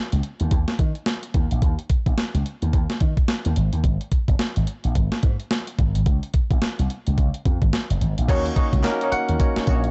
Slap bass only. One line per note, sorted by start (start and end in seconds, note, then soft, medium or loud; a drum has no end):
0.13 0.20 C#2 medium
0.41 0.48 D#2 medium
0.52 0.63 D#2 loud
0.79 0.91 D#3 medium
1.35 1.46 D#2 medium
1.52 1.59 A#1 medium
1.62 1.74 D#2 loud
2.06 2.14 A#1 medium
2.18 muted slap bass stroke soft
2.34 2.42 C#2 medium
2.62 2.70 D#2 medium
2.73 2.85 D#2 medium
3.01 3.13 D#3 medium
3.46 3.54 D#2 medium
3.57 3.69 G#1 loud
3.73 3.81 D#2 medium
3.84 3.96 G#1 medium
4.28 4.36 F#1 medium
4.40 muted slap bass stroke soft
4.57 4.65 G#1 medium
4.85 4.92 A#1 medium
4.96 5.07 G#1 loud
5.23 5.35 G#2 medium
5.79 5.91 G#1 medium
5.96 6.04 G#1 medium
6.06 6.18 C#2 loud
6.51 6.59 A#1 medium
6.63 muted slap bass stroke soft
6.79 6.87 C2 medium
7.07 7.15 C#2 medium
7.18 7.30 C#2 loud
7.46 7.58 F2 medium
7.62 7.70 G#1 medium
7.90 7.98 F#1 medium
8.02 8.13 G#1 medium
8.18 8.26 A#1 medium
8.29 8.49 D#2 loud
8.73 8.81 C#2 medium
9.12 muted slap bass stroke medium
9.29 9.37 D#2 medium
9.57 muted slap bass stroke soft
9.68 9.88 A#1 medium